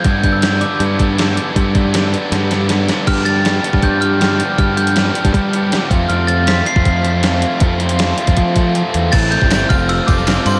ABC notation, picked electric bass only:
X:1
M:4/4
L:1/16
Q:1/4=158
K:Gmix
V:1 name="Picked electric bass" clef=bass
G,,8 G,,8 | G,,8 G,,8 | G,,6- G,, G,, G,,8 | G,,6- G,, G,, G,6 F,,2 |
F,,6- F,, F,, F,,8 | F,,6- F,, F,, F,6 E,,2 | A,,,3 G,,,3 F,,,4 F,,,4 G,,2 |]